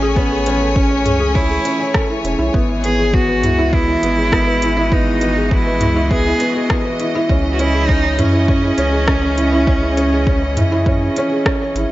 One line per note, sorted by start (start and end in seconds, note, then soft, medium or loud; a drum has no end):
0.00 1.07 A1 medium
0.00 11.92 E3 medium
0.00 2.54 A3 medium
0.00 0.16 C#4 loud
0.00 0.17 C#4 loud
0.00 0.02 G#4 loud
0.00 0.16 G#4 loud
0.00 0.61 A4 medium
0.00 0.90 C#5 medium
0.00 4.36 C#5 loud
0.00 3.71 G#5 loud
0.15 0.76 B3 loud
0.15 0.31 C#4 loud
0.15 kick loud
0.32 0.46 G#4 medium
0.46 0.55 C#4 medium
0.46 closed hi-hat medium
0.61 0.75 A4 medium
0.74 1.36 C#4 medium
0.74 0.90 C#4 medium
0.74 kick loud
0.90 1.05 C#5 medium
1.05 1.59 C#2 medium
1.05 1.18 G#4 medium
1.05 closed hi-hat medium
1.05 mid tom medium
1.20 1.34 G#4 loud
1.35 1.49 C#4 medium
1.35 1.94 E4 medium
1.35 kick loud
1.50 1.64 G#4 medium
1.65 1.79 C#4 medium
1.65 closed hi-hat medium
1.80 1.88 C#5 medium
1.94 2.03 A4 medium
1.94 kick loud
1.94 cross-stick medium
2.10 2.24 E4 medium
2.24 2.36 E1 loud
2.24 2.33 C#4 medium
2.24 closed hi-hat medium
2.39 2.50 B1 medium
2.39 2.53 E4 loud
2.54 3.44 G#1 loud
2.54 7.30 G#3 medium
2.54 2.68 B3 loud
2.54 kick loud
2.69 2.83 E4 medium
2.84 2.92 B3 loud
2.84 3.15 G#4 loud
2.84 closed hi-hat medium
2.99 3.13 G#4 medium
3.13 3.28 B3 medium
3.13 3.75 F#4 loud
3.13 kick loud
3.27 9.19 F#4 medium
3.27 3.43 B4 medium
3.43 3.97 C#2 medium
3.43 3.57 E4 medium
3.43 closed hi-hat medium
3.43 mid tom medium
3.58 3.72 E4 loud
3.58 11.92 D#5 medium
3.73 3.87 B3 loud
3.73 4.94 E4 loud
3.73 kick loud
3.88 4.02 E4 medium
4.03 5.82 G#1 medium
4.03 4.11 B3 loud
4.03 closed hi-hat medium
4.17 4.32 G#4 medium
4.32 4.47 B3 medium
4.32 kick loud
4.32 cross-stick medium
4.47 4.61 B4 medium
4.62 4.75 E4 medium
4.62 closed hi-hat medium
4.77 4.91 E4 loud
4.92 5.06 B3 loud
4.92 5.54 D#4 loud
4.92 kick loud
5.07 5.21 E4 medium
5.21 5.30 B3 loud
5.21 closed hi-hat medium
5.37 5.51 G#4 medium
5.51 5.66 B3 medium
5.51 6.11 E4 loud
5.51 kick loud
5.67 5.80 B4 medium
5.80 6.34 C#2 medium
5.80 5.95 E4 medium
5.80 closed hi-hat medium
5.80 mid tom medium
5.96 6.10 E4 loud
6.11 6.25 B3 loud
6.11 6.67 G#4 loud
6.11 kick loud
6.25 6.40 E4 medium
6.40 6.49 B3 loud
6.40 closed hi-hat medium
6.55 6.69 G#4 medium
6.70 6.84 B3 medium
6.70 kick loud
6.70 cross-stick medium
6.85 6.99 B4 medium
7.00 7.14 E4 medium
7.00 closed hi-hat medium
7.15 7.29 E4 loud
7.29 8.20 C#2 loud
7.29 11.92 C#3 medium
7.29 7.44 C#4 loud
7.29 kick loud
7.45 11.92 C#4 medium
7.45 7.59 E4 medium
7.52 7.61 F#4 medium
7.59 7.68 C#4 loud
7.59 7.90 E4 loud
7.59 closed hi-hat medium
7.74 7.88 G#4 medium
7.88 8.03 C#4 medium
7.88 8.20 D#4 loud
7.88 kick loud
8.04 8.18 C#5 medium
8.18 8.72 F#2 medium
8.18 11.45 C#4 loud
8.18 8.32 E4 medium
8.18 closed hi-hat medium
8.18 mid tom medium
8.33 8.47 E4 loud
8.48 8.62 C#4 medium
8.48 kick loud
8.63 8.77 E4 medium
8.78 10.57 C#2 medium
8.78 8.86 C#4 loud
8.78 closed hi-hat medium
8.93 9.07 G#4 medium
9.07 9.22 C#4 medium
9.07 kick loud
9.07 cross-stick medium
9.22 9.36 C#5 medium
9.37 9.51 E4 medium
9.37 closed hi-hat medium
9.52 9.66 E4 loud
9.67 9.81 C#4 loud
9.67 kick loud
9.82 9.96 E4 medium
9.97 10.05 C#4 loud
9.97 closed hi-hat medium
10.12 10.26 G#4 medium
10.27 10.41 C#4 medium
10.27 kick loud
10.43 10.56 C#5 medium
10.56 11.10 F#2 medium
10.56 10.70 E4 medium
10.56 closed hi-hat medium
10.56 mid tom medium
10.72 10.86 E4 loud
10.86 11.01 C#4 loud
10.86 kick loud
11.02 11.16 E4 medium
11.16 11.25 C#4 loud
11.16 closed hi-hat medium
11.32 11.45 G#4 medium
11.46 11.60 C#4 medium
11.46 kick loud
11.46 cross-stick medium
11.62 11.75 C#5 medium
11.75 11.86 G#1 loud
11.75 11.90 E4 medium
11.75 closed hi-hat medium